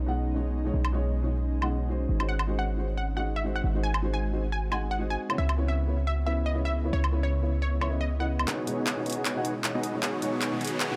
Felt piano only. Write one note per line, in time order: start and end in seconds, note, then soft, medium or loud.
0.06 0.33 B2 medium
0.06 0.33 G#3 medium
0.06 0.33 D#4 medium
0.06 0.34 F#5 medium
0.34 0.62 B2 medium
0.34 0.63 G#3 medium
0.34 0.63 D#4 medium
0.34 0.63 C#5 medium
0.64 0.78 B2 medium
0.64 0.78 G#3 medium
0.64 0.78 D#4 medium
0.64 0.79 C#5 medium
0.92 1.20 B2 medium
0.92 1.21 G#3 medium
0.92 1.21 D#4 medium
0.92 1.21 C#5 medium
1.22 1.30 B2 medium
1.22 1.31 G#3 medium
1.22 1.31 D#4 medium
1.22 1.31 C#5 medium
1.61 1.87 B2 medium
1.61 1.87 G#3 medium
1.61 1.88 D#4 medium
1.61 1.88 F#5 medium
1.89 2.17 G#3 medium
1.89 2.17 D#4 medium
1.89 2.18 F#4 medium
1.89 2.18 C5 medium
2.19 2.33 G#3 medium
2.19 2.33 D#4 medium
2.19 2.33 F#4 medium
2.19 2.34 C5 medium
2.47 2.75 G#3 medium
2.47 2.75 D#4 medium
2.47 2.76 F#4 medium
2.47 2.76 C5 medium
2.77 2.85 G#3 medium
2.77 2.85 D#4 medium
2.77 2.86 F#4 medium
2.77 2.86 C5 medium
3.16 3.42 G#3 medium
3.16 3.43 D#4 medium
3.16 3.43 F#4 medium
3.16 3.43 F#5 medium
3.44 3.72 G#3 medium
3.44 3.72 D#4 medium
3.44 3.73 F#4 medium
3.44 3.73 C5 medium
3.74 3.87 G#3 medium
3.74 3.88 D#4 medium
3.74 3.88 F#4 medium
3.74 3.88 C5 medium
4.02 4.30 G#3 medium
4.02 4.30 D#4 medium
4.02 4.31 F#4 medium
4.02 4.31 C5 medium
4.32 4.40 G#3 medium
4.32 4.40 D#4 medium
4.32 4.41 F#4 medium
4.32 4.41 C5 medium
4.71 4.97 G#3 medium
4.71 4.97 D#4 medium
4.71 4.98 F#4 medium
4.71 4.98 F#5 medium
4.99 5.27 G#3 medium
4.99 5.27 D#4 medium
4.99 5.27 F#4 medium
4.99 5.28 C5 medium
5.29 5.42 C#3 medium
5.29 5.43 B3 medium
5.29 5.43 E4 medium
5.29 5.43 C#5 medium
5.57 5.85 C#3 medium
5.57 5.85 B3 medium
5.57 5.85 E4 medium
5.57 5.86 C#5 medium
5.87 5.95 C#3 medium
5.87 5.95 B3 medium
5.87 5.96 E4 medium
5.87 5.96 C#5 medium
6.26 6.52 C#3 medium
6.26 6.52 B3 medium
6.26 6.53 E4 medium
6.26 6.53 E5 medium
6.53 6.82 C#3 medium
6.53 6.82 B3 medium
6.53 6.82 E4 medium
6.53 6.83 C#5 medium
6.84 6.97 C#3 medium
6.84 6.97 B3 medium
6.84 6.98 E4 medium
6.84 6.98 C#5 medium
7.12 7.40 C#3 medium
7.12 7.40 B3 medium
7.12 7.40 E4 medium
7.12 7.41 C#5 medium
7.42 7.50 C#3 medium
7.42 7.50 B3 medium
7.42 7.50 E4 medium
7.42 7.51 C#5 medium
7.80 7.87 C#3 medium
7.80 7.88 B3 medium
7.80 7.88 E4 medium
7.80 7.89 E5 medium
7.89 8.04 C#3 medium
7.89 8.04 B3 medium
7.89 8.04 E4 medium
7.89 8.05 D#5 medium
8.19 8.46 C#3 medium
8.19 8.47 B3 medium
8.19 8.47 E4 medium
8.19 8.47 D#5 medium
8.66 8.94 B2 medium
8.66 8.95 G#3 medium
8.66 8.95 D#4 medium
8.66 8.95 C#5 medium
8.96 9.04 B2 medium
8.96 9.05 G#3 medium
8.96 9.05 D#4 medium
8.96 9.05 C#5 medium
9.35 9.62 B2 medium
9.35 9.62 G#3 medium
9.35 9.62 D#4 medium
9.35 9.63 F#5 medium
9.63 9.91 B2 medium
9.63 9.92 G#3 medium
9.63 9.92 D#4 medium
9.63 9.92 C#5 medium
9.93 10.07 B2 medium
9.93 10.07 G#3 medium
9.93 10.07 D#4 medium
9.93 10.08 C#5 medium
10.21 10.49 B2 medium
10.21 10.50 G#3 medium
10.21 10.50 D#4 medium
10.21 10.50 C#5 loud
10.51 10.59 B2 medium
10.51 10.60 G#3 medium
10.51 10.60 D#4 medium
10.51 10.60 C#5 medium
10.90 10.96 B2 medium
10.90 10.96 G#3 medium
10.90 10.96 D#4 medium
10.90 10.96 F#5 medium